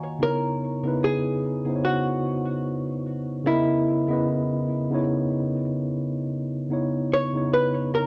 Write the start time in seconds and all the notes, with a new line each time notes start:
Already playing: D#3 A#3 F#4 C#5 D#5 F5 F#5 G#5 A#5
0.19 C#3 B3 D#4 E4 A#4
0.23 C#5
0.83 C#3 B3 D#4 E4
0.88 B4
1.04 G#4
1.65 C#3 B3 D#4 E4
1.69 C5
1.76 C#5
1.85 F#4
3.44 C#3 B3 E4 D#5
3.49 A#4
4.08 C#3 B3 E4 D#5
4.13 B4
4.90 C#3 B3 D#4 E4
4.94 C#5
6.69 C#3 B3 D#4 E4
6.73 C#5
7.14 C#5
7.33 C#3 B3 D#4 E4
7.37 C#5
7.54 B4
7.95 A#4